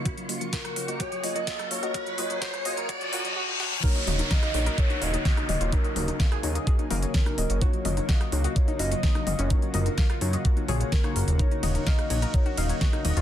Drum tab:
CC |----------------|----------------|x---------------|----------------|
RD |----------------|----------------|----------------|----------------|
HH |xxoxxxoxxxoxxxox|xxoxxxoxxxox----|xxoxxxoxxxoxxxox|xxoxxxoxxxoxxxox|
SD |----or------or--|----or--------o-|----or------or--|----or------or--|
T2 |----------------|----------------|--o-----------o-|--o-------o-----|
CG |----------------|----------------|o--o--o--o---o--|o--o--o--o---o--|
BD |o---o---o---o---|o---o---o-------|o---o---o---o---|o---o---o---o---|

CC |----------------|----------------|----------------|
RD |----------------|----------------|--x---x---x---x-|
HH |xxoxxxoxxxoxxxox|xxoxxxoxxxoxxxox|xxoxxxoxxxoxxxox|
SD |----or------or--|----or------or--|----or------or--|
T2 |--o-----------o-|--o-------o-----|--o-----------o-|
CG |o--o--o--o---o--|o--o--o--o---o--|o--o--o--o---o--|
BD |o---o---o---o---|o---o---o---o---|o---o---o---o---|